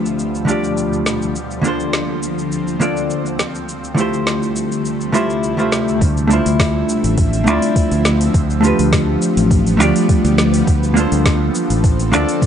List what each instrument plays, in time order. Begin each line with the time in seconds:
Already playing: ambient pad D2 B2 F3 G3, hollow-body jazz guitar D3 A3 D4 F4 G4 B4
0.06 shaker
0.19 shaker
0.35 shaker
0.45 hollow-body jazz guitar D3 A3 D4 F4, shaker
0.50 hollow-body jazz guitar G4 D5
0.64 shaker
0.77 shaker
0.93 shaker
1.06 snare, shaker
1.22 shaker
1.36 ambient pad C4, shaker
1.51 shaker
1.62 hollow-body jazz guitar D3 A#3 D4 F4, shaker
1.66 hollow-body jazz guitar A4 C5
1.80 shaker
1.93 snare, shaker
2.23 shaker
2.39 shaker
2.52 shaker
2.68 shaker
2.80 hollow-body jazz guitar D3 A#3 D4 F4 A4 D5, shaker
2.97 shaker
3.10 shaker
3.26 shaker
3.39 ambient pad C3 G3 A3, snare, shaker
3.55 shaker
3.69 shaker
3.84 shaker
3.94 hollow-body jazz guitar D3 A3 E4 F4, shaker
3.99 hollow-body jazz guitar G4 C5
4.14 shaker
4.27 snare, shaker
4.43 shaker
4.56 shaker
4.72 shaker
4.85 shaker
5.01 shaker
5.12 hollow-body jazz guitar D3 A3 E4 F4 G4 C5, shaker
5.30 shaker
5.44 shaker
5.57 hollow-body jazz guitar D3 A3 E4 F4 G4 C5, shaker
5.72 snare, shaker
5.88 shaker
6.01 fingered electric bass D2, ambient pad D3 F3 C4 E5, kick, open hi-hat, shaker
6.17 shaker
6.27 hollow-body jazz guitar A3 D4 E4, shaker
6.32 hollow-body jazz guitar F4 C5
6.46 fingered electric bass D2, open hi-hat, shaker
6.59 kick, snare, open hi-hat, shaker
6.89 shaker
7.04 fingered electric bass A1, open hi-hat, shaker
7.18 kick, open hi-hat, shaker
7.33 open hi-hat, shaker
7.44 fingered electric bass D2, hollow-body jazz guitar A3 D4 E4, shaker
7.49 hollow-body jazz guitar F4 D5
7.62 open hi-hat, shaker
7.76 kick, open hi-hat, shaker
7.91 fingered electric bass D2, open hi-hat, shaker
8.05 snare, shaker
8.21 open hi-hat, shaker
8.34 fingered electric bass D2, ambient pad G3 B3, kick, open hi-hat, shaker
8.50 shaker
8.61 hollow-body jazz guitar A3 D4 F4, shaker
8.65 hollow-body jazz guitar G4 B4
8.79 fingered electric bass D2, open hi-hat, shaker
8.93 kick, snare, open hi-hat, shaker
9.22 shaker
9.37 fingered electric bass A1, open hi-hat, shaker
9.51 kick, open hi-hat, shaker
9.67 open hi-hat, shaker
9.77 fingered electric bass D2, hollow-body jazz guitar A3 D4 F4, shaker
9.82 hollow-body jazz guitar G4 D5
9.96 open hi-hat, shaker
10.09 kick, open hi-hat, shaker
10.25 fingered electric bass D2, open hi-hat, shaker
10.38 snare, shaker
10.54 open hi-hat, shaker
10.67 fingered electric bass D2, ambient pad D3 C4 A4, kick, open hi-hat, shaker
10.83 shaker
10.94 hollow-body jazz guitar A#3 D4 F4, shaker
10.98 hollow-body jazz guitar A4 C5
11.12 fingered electric bass D2, open hi-hat, shaker
11.26 kick, snare, open hi-hat, shaker
11.55 shaker
11.70 fingered electric bass A1, open hi-hat, shaker
11.84 kick, open hi-hat, shaker
11.99 open hi-hat, shaker
12.12 fingered electric bass D2, hollow-body jazz guitar A#3 D4 F4 A4 D5, shaker
12.29 open hi-hat, shaker
12.42 kick, open hi-hat, shaker